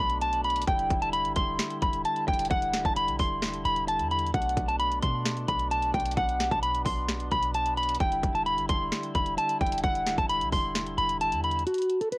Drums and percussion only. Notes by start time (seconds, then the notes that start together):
0.10 closed hi-hat
0.22 closed hi-hat
0.33 closed hi-hat
0.44 closed hi-hat
0.50 closed hi-hat
0.56 closed hi-hat
0.62 closed hi-hat
0.67 kick, closed hi-hat
0.79 closed hi-hat
0.90 kick, closed hi-hat
1.02 closed hi-hat
1.13 closed hi-hat
1.25 closed hi-hat
1.36 kick, closed hi-hat
1.59 snare, closed hi-hat
1.70 closed hi-hat
1.82 kick, closed hi-hat
1.93 closed hi-hat
2.05 closed hi-hat
2.16 closed hi-hat
2.28 kick, closed hi-hat
2.33 closed hi-hat
2.39 closed hi-hat
2.45 closed hi-hat
2.50 kick, closed hi-hat
2.62 closed hi-hat
2.73 snare, closed hi-hat
2.85 kick, closed hi-hat
2.96 closed hi-hat
3.08 closed hi-hat
3.19 kick, open hi-hat
3.42 snare, closed hi-hat
3.54 closed hi-hat
3.65 closed hi-hat
3.76 closed hi-hat
3.88 closed hi-hat
3.99 closed hi-hat
4.11 closed hi-hat
4.19 closed hi-hat
4.26 closed hi-hat
4.34 kick, closed hi-hat
4.42 closed hi-hat
4.49 closed hi-hat
4.57 kick, closed hi-hat
4.69 closed hi-hat
4.80 closed hi-hat
4.92 closed hi-hat
5.03 kick, closed hi-hat
5.26 snare, closed hi-hat
5.37 closed hi-hat
5.49 kick, closed hi-hat
5.60 closed hi-hat
5.72 closed hi-hat
5.83 closed hi-hat
5.94 kick, closed hi-hat
6.00 closed hi-hat
6.06 closed hi-hat
6.12 closed hi-hat
6.17 kick, closed hi-hat
6.29 closed hi-hat
6.40 snare, closed hi-hat
6.51 kick, closed hi-hat
6.63 closed hi-hat
6.75 closed hi-hat
6.86 kick, open hi-hat
7.09 snare, closed hi-hat
7.20 closed hi-hat
7.32 kick, closed hi-hat
7.43 closed hi-hat
7.55 closed hi-hat
7.66 closed hi-hat
7.78 closed hi-hat
7.83 closed hi-hat
7.89 closed hi-hat
7.95 closed hi-hat
8.00 kick, closed hi-hat
8.12 closed hi-hat
8.23 kick, closed hi-hat
8.35 closed hi-hat
8.46 closed hi-hat
8.58 closed hi-hat
8.69 kick, closed hi-hat
8.92 snare, closed hi-hat
9.03 closed hi-hat
9.15 kick, closed hi-hat
9.26 closed hi-hat
9.38 closed hi-hat
9.49 closed hi-hat
9.61 kick, closed hi-hat
9.66 closed hi-hat
9.72 closed hi-hat
9.78 closed hi-hat
9.83 kick, closed hi-hat
9.95 closed hi-hat
10.06 snare, closed hi-hat
10.18 kick, closed hi-hat
10.29 closed hi-hat
10.41 closed hi-hat
10.52 kick, open hi-hat
10.75 snare, closed hi-hat
10.86 closed hi-hat
10.98 closed hi-hat
11.09 closed hi-hat
11.21 closed hi-hat
11.32 closed hi-hat
11.44 closed hi-hat
11.51 closed hi-hat
11.59 closed hi-hat
11.67 closed hi-hat
11.74 closed hi-hat
11.78 closed hi-hat
11.82 closed hi-hat
11.90 closed hi-hat
12.01 closed hi-hat
12.12 closed hi-hat